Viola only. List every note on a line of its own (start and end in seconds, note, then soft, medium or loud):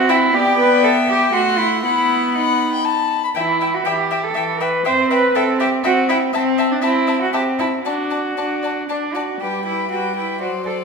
0.00 0.28 C4 medium
0.34 1.29 B3 medium
1.33 1.85 A3 medium
1.84 3.16 B3 medium
3.36 3.81 E3 medium
3.86 4.30 E3 medium
4.36 4.80 E3 medium
4.86 5.30 C4 medium
5.36 5.79 C4 medium
5.85 6.28 C4 medium
6.35 6.78 C4 medium
6.83 7.28 C4 medium
7.33 7.79 C4 medium
7.85 8.31 D4 medium
8.37 8.83 D4 medium
8.89 9.35 D4 medium
9.41 9.85 G3 soft
9.91 10.35 G3 soft
10.42 10.84 F#3 soft